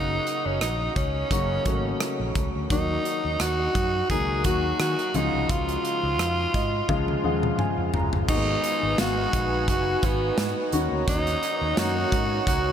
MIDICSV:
0, 0, Header, 1, 6, 480
1, 0, Start_track
1, 0, Key_signature, -6, "minor"
1, 0, Tempo, 697674
1, 1860, Time_signature, 4, 2, 24, 8
1, 8753, End_track
2, 0, Start_track
2, 0, Title_t, "Analog synth pad"
2, 0, Program_c, 0, 89
2, 5702, Note_on_c, 0, 71, 69
2, 5703, Note_on_c, 0, 63, 77
2, 5703, Note_on_c, 0, 66, 69
2, 5703, Note_on_c, 0, 80, 85
2, 7364, Note_off_c, 0, 71, 0
2, 7365, Note_off_c, 0, 80, 0
2, 7384, Note_on_c, 0, 73, 77
2, 7386, Note_on_c, 0, 82, 91
2, 8753, Note_off_c, 0, 63, 0
2, 8753, Note_off_c, 0, 66, 0
2, 8753, Note_off_c, 0, 73, 0
2, 8753, Note_off_c, 0, 82, 0
2, 8753, End_track
3, 0, Start_track
3, 0, Title_t, "Tenor saxophone"
3, 0, Program_c, 1, 66
3, 0, Note_on_c, 1, 63, 92
3, 316, Note_on_c, 1, 61, 75
3, 326, Note_off_c, 1, 63, 0
3, 420, Note_off_c, 1, 61, 0
3, 424, Note_on_c, 1, 63, 78
3, 645, Note_off_c, 1, 63, 0
3, 662, Note_on_c, 1, 61, 81
3, 1594, Note_off_c, 1, 61, 0
3, 1869, Note_on_c, 1, 63, 90
3, 2343, Note_on_c, 1, 66, 96
3, 2354, Note_off_c, 1, 63, 0
3, 2819, Note_off_c, 1, 66, 0
3, 2823, Note_on_c, 1, 68, 94
3, 3045, Note_off_c, 1, 68, 0
3, 3066, Note_on_c, 1, 66, 90
3, 3287, Note_off_c, 1, 66, 0
3, 3306, Note_on_c, 1, 66, 95
3, 3545, Note_on_c, 1, 63, 82
3, 3555, Note_off_c, 1, 66, 0
3, 3787, Note_on_c, 1, 65, 91
3, 3797, Note_off_c, 1, 63, 0
3, 5224, Note_off_c, 1, 65, 0
3, 5704, Note_on_c, 1, 63, 99
3, 6186, Note_on_c, 1, 66, 100
3, 6196, Note_off_c, 1, 63, 0
3, 6663, Note_off_c, 1, 66, 0
3, 6668, Note_on_c, 1, 66, 93
3, 6912, Note_on_c, 1, 59, 80
3, 6923, Note_off_c, 1, 66, 0
3, 7386, Note_off_c, 1, 59, 0
3, 7628, Note_on_c, 1, 63, 100
3, 8109, Note_on_c, 1, 66, 102
3, 8119, Note_off_c, 1, 63, 0
3, 8579, Note_off_c, 1, 66, 0
3, 8583, Note_on_c, 1, 66, 99
3, 8753, Note_off_c, 1, 66, 0
3, 8753, End_track
4, 0, Start_track
4, 0, Title_t, "Grand piano"
4, 0, Program_c, 2, 0
4, 0, Control_c, 2, 64, 127
4, 0, Note_on_c, 2, 49, 71
4, 0, Note_on_c, 2, 54, 65
4, 0, Note_on_c, 2, 58, 65
4, 0, Note_on_c, 2, 66, 78
4, 512, Note_off_c, 2, 49, 0
4, 513, Note_off_c, 2, 54, 0
4, 516, Note_off_c, 2, 58, 0
4, 516, Note_off_c, 2, 66, 0
4, 897, Note_on_c, 2, 49, 70
4, 900, Note_on_c, 2, 54, 64
4, 904, Note_on_c, 2, 58, 65
4, 908, Note_on_c, 2, 66, 80
4, 1104, Note_off_c, 2, 49, 0
4, 1105, Note_off_c, 2, 54, 0
4, 1108, Note_off_c, 2, 58, 0
4, 1109, Note_off_c, 2, 66, 0
4, 1138, Note_on_c, 2, 49, 66
4, 1142, Note_on_c, 2, 54, 59
4, 1145, Note_on_c, 2, 57, 47
4, 1146, Note_on_c, 2, 66, 70
4, 1189, Note_on_c, 2, 58, 58
4, 1192, Note_off_c, 2, 57, 0
4, 1755, Note_off_c, 2, 49, 0
4, 1757, Note_off_c, 2, 54, 0
4, 1759, Note_off_c, 2, 66, 0
4, 1780, Note_off_c, 2, 58, 0
4, 1861, Note_on_c, 2, 51, 67
4, 1864, Note_on_c, 2, 54, 59
4, 1867, Note_on_c, 2, 58, 61
4, 1868, Note_on_c, 2, 66, 71
4, 1869, Control_c, 2, 64, 0
4, 1973, Control_c, 2, 64, 127
4, 2675, Note_off_c, 2, 51, 0
4, 2677, Note_off_c, 2, 54, 0
4, 2678, Note_off_c, 2, 58, 0
4, 2679, Note_off_c, 2, 66, 0
4, 2817, Note_on_c, 2, 51, 71
4, 2819, Note_on_c, 2, 54, 64
4, 2823, Note_on_c, 2, 58, 64
4, 2825, Note_on_c, 2, 63, 75
4, 3024, Note_off_c, 2, 51, 0
4, 3025, Note_off_c, 2, 54, 0
4, 3027, Note_off_c, 2, 58, 0
4, 3028, Note_off_c, 2, 63, 0
4, 3059, Note_on_c, 2, 51, 61
4, 3063, Note_on_c, 2, 54, 57
4, 3064, Note_on_c, 2, 58, 60
4, 3067, Note_on_c, 2, 66, 71
4, 3537, Note_on_c, 2, 49, 69
4, 3540, Note_off_c, 2, 51, 0
4, 3540, Note_on_c, 2, 53, 66
4, 3542, Note_off_c, 2, 54, 0
4, 3542, Note_off_c, 2, 58, 0
4, 3544, Note_off_c, 2, 66, 0
4, 3544, Note_on_c, 2, 56, 65
4, 3547, Note_on_c, 2, 65, 77
4, 3550, Control_c, 2, 64, 0
4, 3670, Control_c, 2, 64, 127
4, 4353, Note_off_c, 2, 49, 0
4, 4354, Note_off_c, 2, 53, 0
4, 4357, Note_off_c, 2, 56, 0
4, 4358, Note_off_c, 2, 65, 0
4, 4500, Note_on_c, 2, 75, 67
4, 4723, Note_off_c, 2, 75, 0
4, 4738, Note_on_c, 2, 49, 81
4, 4741, Note_on_c, 2, 53, 73
4, 4741, Note_on_c, 2, 56, 71
4, 4741, Note_on_c, 2, 77, 68
4, 4745, Note_on_c, 2, 65, 88
4, 4945, Note_off_c, 2, 49, 0
4, 4946, Note_off_c, 2, 53, 0
4, 4946, Note_off_c, 2, 56, 0
4, 4948, Note_off_c, 2, 65, 0
4, 4964, Note_off_c, 2, 77, 0
4, 4979, Note_on_c, 2, 49, 77
4, 4981, Note_on_c, 2, 53, 67
4, 4983, Note_on_c, 2, 78, 64
4, 4986, Note_on_c, 2, 56, 70
4, 4987, Note_on_c, 2, 77, 85
4, 5205, Note_off_c, 2, 78, 0
4, 5221, Note_on_c, 2, 80, 62
4, 5444, Note_off_c, 2, 80, 0
4, 5463, Note_on_c, 2, 82, 63
4, 5595, Note_off_c, 2, 49, 0
4, 5597, Note_off_c, 2, 53, 0
4, 5599, Note_off_c, 2, 56, 0
4, 5599, Note_off_c, 2, 77, 0
4, 5685, Note_off_c, 2, 82, 0
4, 5696, Note_on_c, 2, 51, 65
4, 5699, Note_on_c, 2, 56, 57
4, 5701, Note_on_c, 2, 58, 48
4, 5704, Note_on_c, 2, 66, 69
4, 5709, Control_c, 2, 64, 0
4, 5747, Note_on_c, 2, 59, 61
4, 5750, Note_off_c, 2, 58, 0
4, 5840, Control_c, 2, 64, 127
4, 6109, Note_off_c, 2, 51, 0
4, 6110, Note_off_c, 2, 56, 0
4, 6113, Note_off_c, 2, 66, 0
4, 6134, Note_off_c, 2, 59, 0
4, 6180, Note_on_c, 2, 51, 69
4, 6183, Note_on_c, 2, 56, 66
4, 6186, Note_on_c, 2, 59, 63
4, 6188, Note_on_c, 2, 77, 78
4, 6994, Note_off_c, 2, 51, 0
4, 6996, Note_off_c, 2, 56, 0
4, 6998, Note_off_c, 2, 59, 0
4, 6999, Note_off_c, 2, 77, 0
4, 7379, Note_on_c, 2, 51, 70
4, 7381, Note_on_c, 2, 58, 68
4, 7384, Note_on_c, 2, 61, 68
4, 7385, Note_on_c, 2, 66, 83
4, 7390, Control_c, 2, 64, 0
4, 7530, Control_c, 2, 64, 127
4, 7996, Note_off_c, 2, 51, 0
4, 7997, Note_off_c, 2, 58, 0
4, 7998, Note_off_c, 2, 61, 0
4, 7999, Note_off_c, 2, 66, 0
4, 8097, Note_on_c, 2, 51, 71
4, 8100, Note_on_c, 2, 58, 63
4, 8103, Note_on_c, 2, 61, 63
4, 8106, Note_on_c, 2, 63, 78
4, 8753, Note_off_c, 2, 51, 0
4, 8753, Note_off_c, 2, 58, 0
4, 8753, Note_off_c, 2, 61, 0
4, 8753, Note_off_c, 2, 63, 0
4, 8753, End_track
5, 0, Start_track
5, 0, Title_t, "Fingered electric bass"
5, 0, Program_c, 3, 33
5, 0, Note_on_c, 3, 30, 91
5, 120, Note_off_c, 3, 30, 0
5, 315, Note_on_c, 3, 30, 81
5, 395, Note_off_c, 3, 30, 0
5, 420, Note_on_c, 3, 34, 91
5, 600, Note_off_c, 3, 34, 0
5, 662, Note_on_c, 3, 37, 78
5, 841, Note_off_c, 3, 37, 0
5, 899, Note_on_c, 3, 30, 84
5, 1079, Note_off_c, 3, 30, 0
5, 1141, Note_on_c, 3, 32, 84
5, 1320, Note_off_c, 3, 32, 0
5, 1512, Note_on_c, 3, 34, 84
5, 1593, Note_off_c, 3, 34, 0
5, 1619, Note_on_c, 3, 37, 80
5, 1719, Note_off_c, 3, 37, 0
5, 1753, Note_on_c, 3, 38, 79
5, 1834, Note_off_c, 3, 38, 0
5, 1860, Note_on_c, 3, 39, 91
5, 2040, Note_off_c, 3, 39, 0
5, 2234, Note_on_c, 3, 39, 83
5, 2314, Note_off_c, 3, 39, 0
5, 2338, Note_on_c, 3, 39, 83
5, 2519, Note_off_c, 3, 39, 0
5, 2581, Note_on_c, 3, 42, 83
5, 2760, Note_off_c, 3, 42, 0
5, 2818, Note_on_c, 3, 37, 81
5, 3060, Note_off_c, 3, 37, 0
5, 3060, Note_on_c, 3, 39, 78
5, 3240, Note_off_c, 3, 39, 0
5, 3299, Note_on_c, 3, 51, 87
5, 3399, Note_off_c, 3, 51, 0
5, 3539, Note_on_c, 3, 37, 91
5, 3638, Note_off_c, 3, 37, 0
5, 3670, Note_on_c, 3, 36, 77
5, 3752, Note_off_c, 3, 36, 0
5, 3780, Note_on_c, 3, 37, 92
5, 3960, Note_off_c, 3, 37, 0
5, 4150, Note_on_c, 3, 37, 77
5, 4257, Note_off_c, 3, 37, 0
5, 4257, Note_on_c, 3, 41, 79
5, 4438, Note_off_c, 3, 41, 0
5, 4501, Note_on_c, 3, 44, 83
5, 4681, Note_off_c, 3, 44, 0
5, 4739, Note_on_c, 3, 37, 80
5, 4919, Note_off_c, 3, 37, 0
5, 4980, Note_on_c, 3, 39, 88
5, 5160, Note_off_c, 3, 39, 0
5, 5350, Note_on_c, 3, 41, 77
5, 5432, Note_off_c, 3, 41, 0
5, 5459, Note_on_c, 3, 30, 76
5, 5559, Note_off_c, 3, 30, 0
5, 5590, Note_on_c, 3, 31, 78
5, 5672, Note_off_c, 3, 31, 0
5, 5699, Note_on_c, 3, 32, 105
5, 5879, Note_off_c, 3, 32, 0
5, 6075, Note_on_c, 3, 32, 81
5, 6155, Note_off_c, 3, 32, 0
5, 6185, Note_on_c, 3, 32, 86
5, 6363, Note_off_c, 3, 32, 0
5, 6421, Note_on_c, 3, 34, 85
5, 6659, Note_off_c, 3, 34, 0
5, 6659, Note_on_c, 3, 30, 82
5, 6840, Note_off_c, 3, 30, 0
5, 6900, Note_on_c, 3, 32, 94
5, 7080, Note_off_c, 3, 32, 0
5, 7139, Note_on_c, 3, 44, 85
5, 7238, Note_off_c, 3, 44, 0
5, 7381, Note_on_c, 3, 39, 94
5, 7480, Note_off_c, 3, 39, 0
5, 7511, Note_on_c, 3, 38, 81
5, 7592, Note_off_c, 3, 38, 0
5, 7622, Note_on_c, 3, 39, 98
5, 7801, Note_off_c, 3, 39, 0
5, 7991, Note_on_c, 3, 39, 86
5, 8073, Note_off_c, 3, 39, 0
5, 8100, Note_on_c, 3, 42, 85
5, 8280, Note_off_c, 3, 42, 0
5, 8341, Note_on_c, 3, 44, 89
5, 8521, Note_off_c, 3, 44, 0
5, 8578, Note_on_c, 3, 37, 85
5, 8753, Note_off_c, 3, 37, 0
5, 8753, End_track
6, 0, Start_track
6, 0, Title_t, "Drums"
6, 184, Note_on_c, 9, 42, 60
6, 253, Note_off_c, 9, 42, 0
6, 421, Note_on_c, 9, 42, 86
6, 422, Note_on_c, 9, 37, 97
6, 490, Note_off_c, 9, 42, 0
6, 491, Note_off_c, 9, 37, 0
6, 662, Note_on_c, 9, 36, 79
6, 662, Note_on_c, 9, 42, 57
6, 731, Note_off_c, 9, 36, 0
6, 731, Note_off_c, 9, 42, 0
6, 900, Note_on_c, 9, 36, 85
6, 902, Note_on_c, 9, 42, 83
6, 969, Note_off_c, 9, 36, 0
6, 971, Note_off_c, 9, 42, 0
6, 1139, Note_on_c, 9, 42, 65
6, 1141, Note_on_c, 9, 36, 84
6, 1207, Note_off_c, 9, 42, 0
6, 1209, Note_off_c, 9, 36, 0
6, 1379, Note_on_c, 9, 37, 109
6, 1382, Note_on_c, 9, 42, 82
6, 1448, Note_off_c, 9, 37, 0
6, 1450, Note_off_c, 9, 42, 0
6, 1619, Note_on_c, 9, 42, 58
6, 1620, Note_on_c, 9, 36, 90
6, 1688, Note_off_c, 9, 42, 0
6, 1689, Note_off_c, 9, 36, 0
6, 1860, Note_on_c, 9, 36, 93
6, 1860, Note_on_c, 9, 42, 84
6, 1929, Note_off_c, 9, 36, 0
6, 1929, Note_off_c, 9, 42, 0
6, 2101, Note_on_c, 9, 42, 61
6, 2170, Note_off_c, 9, 42, 0
6, 2337, Note_on_c, 9, 42, 89
6, 2338, Note_on_c, 9, 37, 95
6, 2406, Note_off_c, 9, 42, 0
6, 2407, Note_off_c, 9, 37, 0
6, 2580, Note_on_c, 9, 42, 58
6, 2581, Note_on_c, 9, 36, 80
6, 2649, Note_off_c, 9, 36, 0
6, 2649, Note_off_c, 9, 42, 0
6, 2819, Note_on_c, 9, 36, 86
6, 2822, Note_on_c, 9, 42, 86
6, 2888, Note_off_c, 9, 36, 0
6, 2891, Note_off_c, 9, 42, 0
6, 3057, Note_on_c, 9, 42, 69
6, 3060, Note_on_c, 9, 36, 85
6, 3126, Note_off_c, 9, 42, 0
6, 3129, Note_off_c, 9, 36, 0
6, 3299, Note_on_c, 9, 37, 109
6, 3302, Note_on_c, 9, 42, 82
6, 3368, Note_off_c, 9, 37, 0
6, 3370, Note_off_c, 9, 42, 0
6, 3432, Note_on_c, 9, 42, 44
6, 3501, Note_off_c, 9, 42, 0
6, 3539, Note_on_c, 9, 42, 59
6, 3608, Note_off_c, 9, 42, 0
6, 3780, Note_on_c, 9, 36, 101
6, 3780, Note_on_c, 9, 42, 92
6, 3849, Note_off_c, 9, 36, 0
6, 3849, Note_off_c, 9, 42, 0
6, 3912, Note_on_c, 9, 42, 47
6, 3981, Note_off_c, 9, 42, 0
6, 4023, Note_on_c, 9, 42, 59
6, 4091, Note_off_c, 9, 42, 0
6, 4261, Note_on_c, 9, 37, 97
6, 4261, Note_on_c, 9, 42, 89
6, 4329, Note_off_c, 9, 42, 0
6, 4330, Note_off_c, 9, 37, 0
6, 4501, Note_on_c, 9, 36, 82
6, 4502, Note_on_c, 9, 42, 57
6, 4570, Note_off_c, 9, 36, 0
6, 4571, Note_off_c, 9, 42, 0
6, 4740, Note_on_c, 9, 36, 88
6, 4741, Note_on_c, 9, 48, 48
6, 4808, Note_off_c, 9, 36, 0
6, 4810, Note_off_c, 9, 48, 0
6, 4872, Note_on_c, 9, 48, 45
6, 4941, Note_off_c, 9, 48, 0
6, 5113, Note_on_c, 9, 47, 54
6, 5181, Note_off_c, 9, 47, 0
6, 5220, Note_on_c, 9, 45, 77
6, 5289, Note_off_c, 9, 45, 0
6, 5460, Note_on_c, 9, 43, 90
6, 5529, Note_off_c, 9, 43, 0
6, 5592, Note_on_c, 9, 43, 79
6, 5661, Note_off_c, 9, 43, 0
6, 5700, Note_on_c, 9, 36, 101
6, 5700, Note_on_c, 9, 49, 91
6, 5769, Note_off_c, 9, 36, 0
6, 5769, Note_off_c, 9, 49, 0
6, 5942, Note_on_c, 9, 42, 59
6, 6011, Note_off_c, 9, 42, 0
6, 6179, Note_on_c, 9, 42, 85
6, 6180, Note_on_c, 9, 38, 104
6, 6248, Note_off_c, 9, 42, 0
6, 6249, Note_off_c, 9, 38, 0
6, 6421, Note_on_c, 9, 36, 80
6, 6421, Note_on_c, 9, 42, 60
6, 6490, Note_off_c, 9, 36, 0
6, 6490, Note_off_c, 9, 42, 0
6, 6659, Note_on_c, 9, 36, 84
6, 6661, Note_on_c, 9, 42, 86
6, 6728, Note_off_c, 9, 36, 0
6, 6730, Note_off_c, 9, 42, 0
6, 6899, Note_on_c, 9, 42, 68
6, 6900, Note_on_c, 9, 36, 89
6, 6967, Note_off_c, 9, 42, 0
6, 6969, Note_off_c, 9, 36, 0
6, 7139, Note_on_c, 9, 38, 117
6, 7141, Note_on_c, 9, 42, 89
6, 7208, Note_off_c, 9, 38, 0
6, 7210, Note_off_c, 9, 42, 0
6, 7379, Note_on_c, 9, 42, 62
6, 7447, Note_off_c, 9, 42, 0
6, 7621, Note_on_c, 9, 36, 105
6, 7622, Note_on_c, 9, 42, 90
6, 7690, Note_off_c, 9, 36, 0
6, 7690, Note_off_c, 9, 42, 0
6, 7753, Note_on_c, 9, 42, 50
6, 7822, Note_off_c, 9, 42, 0
6, 7862, Note_on_c, 9, 42, 62
6, 7931, Note_off_c, 9, 42, 0
6, 8099, Note_on_c, 9, 42, 91
6, 8100, Note_on_c, 9, 38, 109
6, 8168, Note_off_c, 9, 38, 0
6, 8168, Note_off_c, 9, 42, 0
6, 8340, Note_on_c, 9, 36, 88
6, 8340, Note_on_c, 9, 42, 57
6, 8408, Note_off_c, 9, 42, 0
6, 8409, Note_off_c, 9, 36, 0
6, 8579, Note_on_c, 9, 36, 87
6, 8582, Note_on_c, 9, 42, 87
6, 8648, Note_off_c, 9, 36, 0
6, 8650, Note_off_c, 9, 42, 0
6, 8753, End_track
0, 0, End_of_file